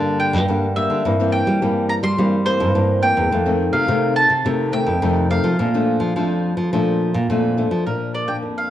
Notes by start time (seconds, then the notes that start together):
Already playing: G2 D3 G3 A#3 D4 A5
0.20 G5
0.33 G2
0.48 G2 D3 G3 A#3 D4
0.76 G3 A#3 D4 E5
0.90 D3
1.05 G2 E3 A#3 C4
1.20 E3 A#3 C4
1.32 G5
1.47 G3
1.61 G2 E3 G3 A#3 C4
1.89 A#5
2.03 G3 C6
2.18 G2 E3 G3 A#3 C4
2.46 E3 A#3 C4 C5
2.60 G2
2.75 G2 E3 A#3 C4
3.02 E3 A#3 C4 G5
3.17 E2
3.31 F2 D#3 A3 C4
3.46 D#3 A3 C4
3.73 C3 F5
3.88 C3 D#3 A3 C4
4.16 A5
4.30 C3
4.45 F2 C3 D#3 A3 C4
4.72 D#3 A3 C4 G5
4.87 F2
5.02 F2 C3 D#3 A3 C4
5.30 D#3 A3 C4 F5
5.44 F3
5.59 A#2 F3 A3 D4
5.74 F3 A3 D4
6.00 F3
6.16 F2 F3 A3 D4
6.57 F3
6.72 A#2 F3 A3 D4
7.14 A#2
7.30 F2 A#2 F3 A3 D4
7.57 F3 A3 D4
7.71 F3
7.86 A#2 F3 A#3 D4 A#4
8.14 D5
8.27 F3 A#3 D4 G5
8.42 F2
8.58 F5